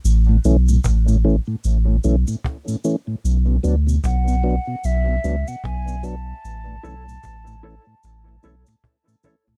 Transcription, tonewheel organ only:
0.29 0.37 A2 medium
0.45 0.57 E3 medium
0.45 0.57 A3 medium
0.45 0.57 C#4 medium
0.69 0.77 A2 medium
1.08 1.16 A2 medium
1.24 1.36 E3 medium
1.24 1.36 A3 medium
1.24 1.36 C#4 medium
1.47 1.56 A2 medium
1.88 1.96 A2 medium
2.04 2.16 E3 medium
2.04 2.16 A3 medium
2.04 2.16 C#4 medium
2.28 2.36 A2 medium
2.68 2.76 A2 medium
2.84 2.96 E3 medium
2.84 2.96 A3 medium
2.84 2.96 C#4 medium
3.07 3.16 A2 medium
3.47 3.56 B2 medium
3.63 3.75 F#3 medium
3.63 3.76 B3 medium
3.63 3.76 D4 medium
3.87 3.95 B2 medium
4.28 4.36 B2 medium
4.43 4.55 F#3 medium
4.43 4.56 B3 medium
4.43 4.56 D4 medium
4.67 4.76 B2 medium
5.08 5.16 B2 medium
5.24 5.36 F#3 medium
5.24 5.36 B3 medium
5.24 5.36 D4 medium
5.48 5.56 B2 medium
5.88 5.96 B2 medium
6.03 6.15 F#3 medium
6.03 6.16 B3 medium
6.03 6.16 D4 medium
6.67 6.75 A2 medium
6.83 6.95 E3 medium
6.83 6.95 A3 medium
6.83 6.96 C#4 medium
7.07 7.15 A2 medium
7.47 7.55 A2 medium
7.63 7.75 E3 medium
7.63 7.75 A3 medium
7.63 7.75 C#4 medium
7.87 7.95 A2 medium
8.28 8.36 A2 soft
8.43 8.55 E3 medium
8.43 8.55 A3 medium
8.43 8.55 C#4 medium
8.67 8.75 A2 medium
9.07 9.15 A2 medium
9.23 9.35 E3 medium
9.23 9.36 A3 medium
9.23 9.36 C#4 medium
9.47 9.55 A2 medium

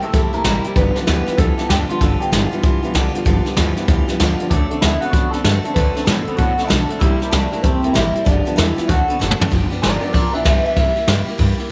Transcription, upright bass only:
0.02 muted upright bass stroke medium
0.14 0.32 E2 medium
0.33 0.43 E2 medium
0.44 0.62 A1 medium
0.64 muted upright bass stroke medium
0.76 0.94 G1 loud
0.96 muted upright bass stroke medium
1.08 1.25 D2 loud
1.28 muted upright bass stroke medium
1.38 1.56 D2 medium
1.58 muted upright bass stroke medium
1.69 1.87 D2 medium
1.90 muted upright bass stroke medium
2.01 2.19 G1 medium
2.21 muted upright bass stroke medium
2.32 2.50 G1 loud
2.51 muted upright bass stroke medium
2.64 2.81 B1 medium
2.83 2.93 B1 medium
2.95 3.12 C2 medium
3.14 muted upright bass stroke medium
3.26 3.44 G1 medium
3.46 muted upright bass stroke medium
3.58 3.75 D2 loud
3.78 muted upright bass stroke medium
3.88 4.06 D2 medium
4.09 muted upright bass stroke medium
4.20 4.38 D2 loud
4.40 muted upright bass stroke medium
4.51 4.69 D2 medium
4.71 muted upright bass stroke medium
4.83 5.00 D2 medium
5.03 muted upright bass stroke medium
5.13 5.31 F#2 medium
5.34 5.44 F#2 medium
5.44 5.62 G2 medium
5.64 muted upright bass stroke medium
5.76 5.94 D2 loud
5.96 muted upright bass stroke medium
6.07 6.25 A2 loud
6.28 muted upright bass stroke medium
6.39 6.57 A2 medium
6.59 muted upright bass stroke medium
6.70 6.88 B1 medium
6.90 muted upright bass stroke medium
7.01 7.19 C2 medium
7.21 muted upright bass stroke medium
7.32 7.50 C2 loud
7.52 muted upright bass stroke medium
7.64 7.82 E2 medium
7.84 7.94 E2 medium
7.96 8.14 A1 loud
8.16 muted upright bass stroke medium
8.26 8.44 G1 medium
8.47 muted upright bass stroke medium
8.58 8.76 E2 loud
8.78 muted upright bass stroke medium
8.89 9.07 D2 medium
9.10 muted upright bass stroke medium
9.21 9.38 F#1 medium
9.40 muted upright bass stroke medium
9.51 9.69 G1 loud
9.72 muted upright bass stroke medium
9.83 10.01 G1 loud
10.03 muted upright bass stroke medium
10.14 10.32 B1 medium
10.34 10.44 B1 medium
10.46 10.63 C2 medium
10.66 muted upright bass stroke medium
10.77 10.95 C2 loud
10.97 muted upright bass stroke medium
11.08 11.26 G2 loud
11.28 muted upright bass stroke medium
11.39 11.57 G2 medium
11.59 muted upright bass stroke medium

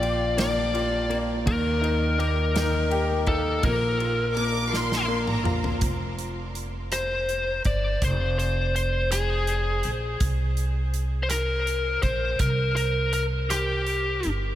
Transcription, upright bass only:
0.00 1.43 A#1 loud
1.47 3.60 D#2 loud
3.64 5.78 A#1 loud
5.82 7.61 F1 medium
7.65 8.00 G1 medium
8.02 9.80 F1 loud
9.85 10.19 A#1 medium
10.21 11.99 C2 medium
12.03 12.38 A#1 medium
12.40 14.20 C2 medium
14.25 14.55 G1 medium

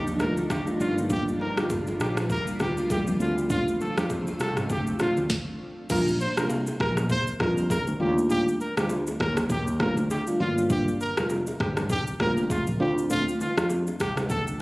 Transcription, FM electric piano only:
0.20 0.43 G3 medium
0.20 0.43 A3 medium
0.20 0.43 D4 medium
0.20 0.43 F4 medium
0.67 0.79 G3 medium
0.67 0.87 A3 medium
0.67 0.79 D4 medium
0.67 0.79 F4 medium
0.80 1.08 G3 loud
0.80 1.08 A#3 medium
0.80 1.08 D4 medium
0.80 1.08 F4 loud
1.09 1.32 G3 medium
1.09 1.33 A#3 medium
1.09 1.33 D4 medium
1.09 1.33 F4 loud
1.57 1.77 G3 medium
1.57 1.77 A#3 medium
1.57 1.77 D4 medium
1.57 1.78 F4 medium
2.60 2.83 G3 medium
2.60 2.83 A#3 medium
2.60 2.83 D4 medium
2.60 2.83 F4 medium
3.20 3.48 A3 medium
3.20 3.48 C4 medium
3.20 3.48 D4 medium
3.20 3.48 F4 loud
3.50 3.73 A3 medium
3.50 3.73 C4 medium
3.50 3.73 D4 medium
3.50 3.73 F4 loud
3.97 4.17 A3 medium
3.97 4.17 C4 medium
3.97 4.17 D4 medium
3.97 4.18 F4 medium
5.00 5.23 A3 medium
5.00 5.23 C4 medium
5.00 5.23 D4 medium
5.00 5.23 F4 medium
5.90 6.13 G3 medium
5.90 6.13 A#3 medium
5.90 6.13 D4 medium
5.90 6.13 F4 loud
6.37 6.57 G3 medium
6.37 6.57 A#3 medium
6.37 6.57 D4 medium
6.37 6.57 F4 medium
7.40 7.63 G3 medium
7.40 7.63 A#3 medium
7.40 7.63 D4 medium
7.40 7.63 F4 medium
8.00 8.28 G3 medium
8.00 8.28 A3 medium
8.00 8.28 D4 medium
8.00 8.28 F4 loud
8.30 8.53 G3 loud
8.30 8.53 A3 medium
8.30 8.53 D4 medium
8.30 8.53 F4 loud
8.77 8.97 G3 medium
8.77 8.97 A3 medium
8.77 8.97 D4 medium
8.77 8.97 F4 medium
9.79 10.03 G3 medium
9.79 10.03 A3 medium
9.79 10.03 D4 medium
9.79 10.03 F4 medium
10.27 10.39 G3 medium
10.27 10.47 A3 medium
10.27 10.39 D4 medium
10.27 10.39 F4 medium
10.40 10.68 G3 medium
10.40 10.68 A#3 medium
10.40 10.68 D4 medium
10.40 10.68 F4 loud
10.70 10.93 G3 loud
10.70 10.93 A#3 medium
10.70 10.93 D4 medium
10.70 10.93 F4 loud
11.17 11.37 G3 medium
11.17 11.37 A#3 medium
11.17 11.38 D4 medium
11.17 11.38 F4 medium
12.20 12.43 G3 medium
12.20 12.43 A#3 medium
12.20 12.43 D4 medium
12.20 12.43 F4 medium
12.80 13.08 A3 medium
12.80 13.08 C4 medium
12.80 13.08 D4 medium
12.80 13.08 F4 loud
13.10 13.33 A3 medium
13.10 13.33 C4 medium
13.10 13.33 D4 medium
13.10 13.33 F4 loud
13.57 13.77 A3 medium
13.57 13.77 C4 medium
13.57 13.77 D4 medium
13.57 13.78 F4 medium

